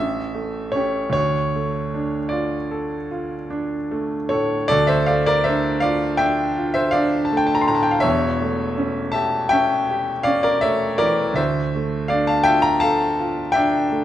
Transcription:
0.00 1.11 A1 medium
0.00 0.72 E5 medium
0.34 0.98 A3 soft
0.72 1.11 C#4 soft
0.72 1.11 C#5 medium
0.76 1.12 G4 soft
1.10 4.65 D2 medium
1.10 2.31 C#5 medium
1.55 2.17 A3 soft
1.94 2.55 D4 soft
2.29 2.94 F4 soft
2.29 4.31 D5 medium
2.71 3.35 A4 soft
3.11 3.75 F4 soft
3.50 4.16 D4 soft
3.91 4.56 A3 soft
4.29 4.72 A2 soft
4.29 4.68 A4 medium
4.29 4.70 C#5 medium
4.68 8.00 D2 medium
4.68 4.88 A4 medium
4.68 4.89 D5 loud
4.87 5.07 C5 medium
4.87 5.08 E5 medium
5.06 5.70 A3 soft
5.06 5.25 D5 medium
5.06 5.27 F5 medium
5.26 5.45 A#4 medium
5.26 5.46 D5 medium
5.44 6.06 D4 soft
5.44 5.81 C5 medium
5.44 5.83 E5 medium
5.80 6.43 F4 medium
5.80 6.17 D5 medium
5.80 6.19 F5 medium
6.17 6.80 D4 medium
6.17 6.71 E5 medium
6.17 6.75 G5 medium
6.57 7.17 F4 medium
6.74 6.93 C5 medium
6.74 6.94 E5 medium
6.91 7.53 D4 medium
6.91 7.24 D5 medium
6.91 7.26 F5 medium
7.25 7.39 A5 medium
7.32 7.90 A3 medium
7.37 7.49 G5 medium
7.47 7.57 A5 medium
7.55 7.63 A#5 medium
7.61 7.70 C6 medium
7.68 8.04 A2 medium
7.68 7.77 A#5 medium
7.75 7.84 A5 medium
7.83 7.93 G5 medium
7.91 8.03 F5 medium
8.00 11.33 E1 medium
8.00 11.34 E2 medium
8.00 9.11 C#5 medium
8.00 9.11 E5 medium
8.41 9.01 A3 soft
8.78 9.38 C#4 medium
9.12 9.75 G4 medium
9.12 9.49 E5 medium
9.12 9.51 A5 medium
9.49 10.12 C#4 medium
9.49 10.22 E5 medium
9.49 10.25 G5 medium
9.90 10.49 G4 medium
10.23 10.86 C#4 medium
10.23 10.42 D5 medium
10.23 10.44 F5 medium
10.43 10.62 A#4 medium
10.43 10.63 D5 medium
10.61 11.23 A3 medium
10.61 10.98 C#5 medium
10.61 11.00 E5 medium
10.98 11.38 E3 medium
10.98 11.34 A#4 medium
10.98 11.36 D5 medium
11.34 14.04 D2 medium
11.34 12.06 C5 medium
11.34 12.09 E5 medium
11.76 12.32 A3 medium
12.08 12.68 D4 soft
12.08 12.27 D5 medium
12.08 12.27 F5 medium
12.27 12.45 F5 medium
12.27 12.46 A5 medium
12.44 13.04 F4 medium
12.44 12.62 E5 medium
12.44 12.61 G5 loud
12.62 12.80 G5 medium
12.62 12.81 A#5 medium
12.80 13.42 A4 medium
12.80 13.51 F5 medium
12.80 13.55 A5 loud
13.19 13.78 F4 soft
13.52 14.04 D4 medium
13.52 14.04 E5 medium
13.52 14.04 G5 loud
13.92 14.04 A3 medium

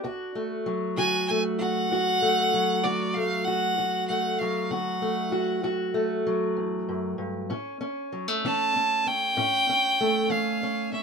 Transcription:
0.00 0.60 D2 medium
0.00 0.35 D4 medium
0.04 0.98 F#4 medium
0.35 1.30 A3 medium
0.66 2.53 F#3 medium
0.97 1.53 D3 medium
0.97 1.61 F#4 medium
0.97 1.26 G#5 loud
1.28 2.22 A3 medium
1.28 1.42 G#5 loud
1.58 1.92 F#4 medium
1.58 2.85 F#5 loud
1.91 2.47 D2 medium
1.91 2.84 F#4 medium
2.22 3.16 A3 medium
2.54 4.40 F#3 medium
2.83 3.40 D3 medium
2.83 3.46 F#4 medium
2.83 3.16 D5 medium
3.14 4.10 A3 medium
3.14 3.46 F5 loud
3.44 3.74 F#4 medium
3.44 4.07 F#5 loud
3.78 4.34 D2 medium
3.78 4.71 F#4 medium
4.07 5.01 A3 medium
4.07 4.40 F#5 medium
4.39 6.25 F#3 medium
4.39 4.72 F5 medium
4.70 5.27 D3 medium
4.70 5.31 F#4 medium
4.70 5.64 F#5 medium
5.02 5.94 A3 medium
5.32 5.63 F#4 medium
5.63 6.20 D2 medium
5.63 7.47 F#4 medium
5.94 7.50 A3 medium
6.27 7.51 F#3 medium
6.56 6.88 E2 medium
6.89 7.18 F#2 medium
7.18 7.50 G2 medium
7.50 8.06 A2 medium
7.50 7.80 C#4 medium
7.81 8.44 C#4 medium
8.12 8.28 F#3 medium
8.28 9.99 A3 soft
8.45 9.01 E3 medium
8.45 8.76 C#4 medium
8.45 9.09 A5 loud
8.76 9.06 C#4 medium
9.07 9.37 C#4 medium
9.07 10.33 G5 loud
9.37 9.94 A2 medium
9.37 9.68 C#4 medium
9.69 10.29 C#4 medium
10.01 11.03 A3 medium
10.30 10.87 E3 medium
10.30 10.62 C#4 medium
10.30 10.93 F5 medium
10.63 10.91 C#4 medium
10.93 11.03 C#4 medium
10.93 11.03 E5 medium

